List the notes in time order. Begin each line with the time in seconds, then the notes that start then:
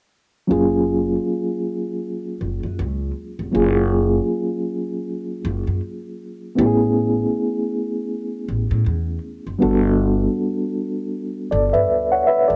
0.47 F#1 F#3 A#3 C#4 F4
0.52 G#4
2.41 F#1
2.63 F#2
2.79 C#2
3.39 F1
3.52 F#1 F#3 A#3 C#4 F4
3.56 G#4
5.45 F#1
5.67 F#2
6.55 A1 A3 B3 C#4 E4 G4
6.66 G#4
8.49 A1
8.71 A2
8.86 E2
9.47 F#1
9.59 G1 G3 B3 D4 F#4
9.63 A4
11.51 G1 A4 D5
11.73 G2 B4 E5
11.90 D2
12.12 C#5 F#5
12.27 B4 E5
12.48 F1 A4 D5